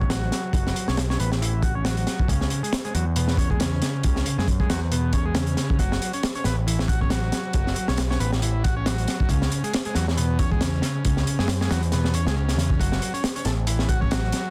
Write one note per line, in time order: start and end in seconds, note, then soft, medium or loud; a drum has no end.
0.00 0.29 A1 medium
0.00 0.10 C#4 medium
0.00 kick medium
0.10 0.53 F#3 medium
0.10 snare loud
0.10 closed hi-hat medium
0.32 snare soft
0.32 closed hi-hat medium
0.53 0.72 F#1 medium
0.53 0.87 F#3 medium
0.53 kick loud
0.53 closed hi-hat medium
0.67 snare soft
0.76 closed hi-hat medium
0.88 1.17 B1 medium
0.88 0.97 C#4 loud
0.88 snare medium
0.97 snare loud
0.97 closed hi-hat medium
1.10 1.19 C#4 medium
1.10 snare medium
1.19 2.05 A1 loud
1.19 1.31 B3 medium
1.19 closed hi-hat medium
1.32 snare soft
1.41 1.62 E3 medium
1.41 closed hi-hat medium
1.62 1.74 F#4 medium
1.62 kick loud
1.62 closed hi-hat medium
1.75 1.85 C#4 medium
1.85 2.28 F#3 medium
1.85 snare loud
1.85 closed hi-hat medium
1.97 closed hi-hat soft
2.07 snare soft
2.07 closed hi-hat medium
2.19 kick loud
2.28 2.47 C#2 loud
2.28 2.62 C#3 medium
2.28 kick loud
2.28 closed hi-hat medium
2.41 snare soft
2.50 closed hi-hat medium
2.63 2.72 G#3 loud
2.63 closed hi-hat soft
2.73 snare loud
2.73 closed hi-hat medium
2.85 2.94 G#3 medium
2.85 closed hi-hat soft
2.94 3.80 E2 loud
2.94 3.05 F#3 medium
2.94 closed hi-hat medium
3.16 3.37 B2 medium
3.16 closed hi-hat medium
3.28 snare soft
3.37 3.49 C#4 medium
3.37 kick loud
3.37 closed hi-hat medium
3.50 3.60 G#3 loud
3.50 kick medium
3.60 4.03 C#3 medium
3.60 snare loud
3.60 closed hi-hat medium
3.82 snare soft
3.82 closed hi-hat medium
4.03 4.23 C#2 loud
4.03 4.37 C#3 medium
4.03 kick loud
4.03 closed hi-hat medium
4.16 snare soft
4.26 closed hi-hat medium
4.38 4.67 F#2 medium
4.38 4.47 G#3 loud
4.38 snare soft
4.48 kick medium
4.48 closed hi-hat medium
4.60 4.69 G#3 medium
4.60 kick medium
4.70 5.55 E2 loud
4.70 4.81 F#3 medium
4.70 snare loud
4.70 closed hi-hat medium
4.92 5.13 B2 medium
4.92 closed hi-hat medium
5.13 5.25 C#4 medium
5.13 kick loud
5.13 closed hi-hat medium
5.26 5.35 G#3 medium
5.35 5.78 C#3 medium
5.35 snare loud
5.35 closed hi-hat medium
5.47 closed hi-hat soft
5.57 snare soft
5.57 closed hi-hat medium
5.70 kick medium
5.79 5.98 F#1 loud
5.79 6.12 F#3 medium
5.79 kick loud
5.79 closed hi-hat medium
5.92 snare medium
6.02 closed hi-hat medium
6.13 6.23 C#4 loud
6.13 closed hi-hat soft
6.23 snare loud
6.23 closed hi-hat medium
6.35 6.44 C#4 medium
6.35 closed hi-hat soft
6.44 7.30 A1 loud
6.44 6.56 B3 loud
6.44 snare medium
6.44 closed hi-hat medium
6.67 6.88 E3 medium
6.67 closed hi-hat medium
6.79 snare soft
6.88 7.00 F#4 medium
6.88 kick loud
6.88 closed hi-hat medium
7.01 7.10 C#4 medium
7.01 kick loud
7.10 7.53 F#3 medium
7.10 snare loud
7.10 closed hi-hat medium
7.32 snare medium
7.32 closed hi-hat medium
7.53 7.73 F#1 loud
7.53 7.87 F#3 medium
7.53 kick loud
7.53 closed hi-hat medium
7.67 snare soft
7.76 closed hi-hat medium
7.88 8.18 B1 medium
7.88 7.98 C#4 loud
7.88 snare medium
7.97 snare loud
7.97 closed hi-hat medium
8.10 8.19 C#4 medium
8.10 snare medium
8.20 9.05 A1 loud
8.20 8.31 B3 loud
8.20 closed hi-hat medium
8.33 snare soft
8.42 8.63 E3 medium
8.42 closed hi-hat medium
8.64 8.75 F#4 medium
8.64 kick loud
8.64 closed hi-hat medium
8.76 8.85 C#4 medium
8.86 9.29 F#3 medium
8.86 snare loud
8.86 closed hi-hat medium
8.98 closed hi-hat soft
9.08 snare soft
9.08 closed hi-hat medium
9.20 kick loud
9.29 9.48 C#2 loud
9.29 9.63 C#3 medium
9.29 kick loud
9.29 closed hi-hat medium
9.42 snare soft
9.52 closed hi-hat medium
9.64 9.73 G#3 loud
9.64 closed hi-hat soft
9.73 snare loud
9.73 closed hi-hat medium
9.85 9.94 G#3 medium
9.85 closed hi-hat soft
9.95 10.80 E2 loud
9.95 10.06 F#3 loud
9.95 snare soft
9.95 closed hi-hat medium
10.08 snare soft
10.17 10.38 B2 medium
10.17 closed hi-hat medium
10.39 10.50 C#4 medium
10.39 kick loud
10.39 closed hi-hat medium
10.51 10.61 G#3 loud
10.51 kick medium
10.61 11.04 C#3 medium
10.61 snare loud
10.61 closed hi-hat medium
10.82 snare soft
10.82 closed hi-hat medium
11.05 11.24 C#2 loud
11.05 11.38 C#3 medium
11.05 kick loud
11.05 closed hi-hat medium
11.17 snare soft
11.27 closed hi-hat medium
11.39 11.68 F#2 medium
11.39 11.48 G#3 loud
11.39 snare medium
11.48 snare loud
11.48 closed hi-hat medium
11.61 11.70 G#3 medium
11.61 snare medium
11.70 12.26 E2 medium
11.70 11.82 F#3 loud
11.70 snare loud
11.70 closed hi-hat medium
11.83 closed hi-hat soft
11.92 12.14 B2 medium
11.92 snare soft
11.92 closed hi-hat medium
12.04 snare soft
12.14 12.26 C#4 medium
12.14 closed hi-hat medium
12.26 12.58 C#2 medium
12.26 12.36 G#3 loud
12.26 snare soft
12.37 12.79 C#3 medium
12.49 snare soft
12.49 closed hi-hat medium
12.58 12.77 E2 medium
12.58 snare soft
12.58 closed hi-hat medium
12.70 kick loud
12.80 12.99 F#1 loud
12.80 13.13 F#3 medium
12.80 kick loud
12.80 closed hi-hat medium
12.92 snare soft
13.02 closed hi-hat medium
13.14 13.23 C#4 loud
13.14 closed hi-hat soft
13.24 snare loud
13.24 closed hi-hat medium
13.36 13.45 C#4 medium
13.36 closed hi-hat soft
13.45 14.31 A1 medium
13.45 13.52 A3 medium
13.45 snare medium
13.45 closed hi-hat medium
13.67 13.88 E3 medium
13.67 closed hi-hat medium
13.79 snare soft
13.89 14.00 F#4 medium
13.89 kick medium
13.89 closed hi-hat medium
14.01 14.11 C#4 loud
14.01 kick medium
14.11 14.50 F#3 medium
14.11 snare loud
14.11 closed hi-hat medium
14.32 snare soft
14.32 closed hi-hat medium